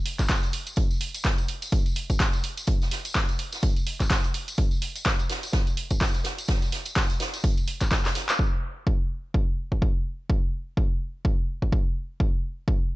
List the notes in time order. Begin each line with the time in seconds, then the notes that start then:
0.06 closed hi-hat, open hi-hat
0.19 kick, clap, closed hi-hat, tambourine
0.29 kick, snare, clap, closed hi-hat, tambourine
0.43 closed hi-hat, tambourine
0.53 closed hi-hat, open hi-hat
0.67 closed hi-hat, tambourine
0.76 kick, closed hi-hat, tambourine
0.91 tambourine
1.00 closed hi-hat, open hi-hat
1.14 closed hi-hat, tambourine
1.25 kick, snare, clap, closed hi-hat
1.38 closed hi-hat, tambourine
1.48 closed hi-hat, open hi-hat
1.62 closed hi-hat, tambourine
1.72 kick, closed hi-hat, tambourine
1.86 closed hi-hat, tambourine
1.96 closed hi-hat, open hi-hat
2.10 kick, closed hi-hat, tambourine
2.20 kick, snare, clap, closed hi-hat, tambourine
2.33 closed hi-hat, tambourine
2.44 closed hi-hat, open hi-hat
2.57 closed hi-hat, tambourine
2.67 kick, closed hi-hat, tambourine
2.81 snare, tambourine
2.91 snare, closed hi-hat, open hi-hat
3.05 closed hi-hat, tambourine
3.15 kick, snare, clap, closed hi-hat, open hi-hat, tambourine
3.29 closed hi-hat, tambourine
3.38 closed hi-hat, open hi-hat
3.52 snare, closed hi-hat, tambourine
3.63 kick, closed hi-hat, tambourine
3.76 closed hi-hat, tambourine
3.86 closed hi-hat, open hi-hat
4.00 kick, clap, closed hi-hat, tambourine
4.10 kick, snare, clap, closed hi-hat, tambourine
4.24 closed hi-hat, tambourine
4.34 closed hi-hat, open hi-hat
4.48 closed hi-hat, tambourine
4.58 kick, closed hi-hat, tambourine
4.71 tambourine
4.82 closed hi-hat, open hi-hat
4.96 closed hi-hat, tambourine
5.05 kick, snare, clap, closed hi-hat
5.19 closed hi-hat, tambourine
5.29 snare, closed hi-hat, open hi-hat
5.43 closed hi-hat, tambourine
5.52 kick, snare, closed hi-hat, tambourine
5.67 closed hi-hat, tambourine
5.77 closed hi-hat, open hi-hat
5.90 kick, closed hi-hat, tambourine
6.01 kick, snare, clap, closed hi-hat, tambourine
6.14 snare, closed hi-hat, tambourine
6.24 snare, closed hi-hat, open hi-hat
6.38 closed hi-hat, tambourine
6.48 kick, snare, closed hi-hat, tambourine
6.62 snare, closed hi-hat, tambourine
6.72 snare, closed hi-hat, open hi-hat
6.85 closed hi-hat, tambourine
6.95 kick, snare, clap, closed hi-hat, open hi-hat, tambourine
7.10 closed hi-hat, tambourine
7.20 snare, closed hi-hat, open hi-hat
7.33 snare, closed hi-hat, tambourine
7.44 kick, closed hi-hat, tambourine
7.57 closed hi-hat, tambourine
7.67 closed hi-hat, open hi-hat
7.81 kick, clap, closed hi-hat, tambourine
7.91 kick, snare, clap, closed hi-hat, tambourine
8.05 snare, clap, closed hi-hat, tambourine
8.15 snare, closed hi-hat, open hi-hat
8.29 clap, closed hi-hat, tambourine
8.39 kick
8.87 kick
9.34 kick
9.72 kick
9.82 kick
10.30 kick
10.77 kick
11.25 kick
11.62 kick
11.72 kick
12.20 kick
12.68 kick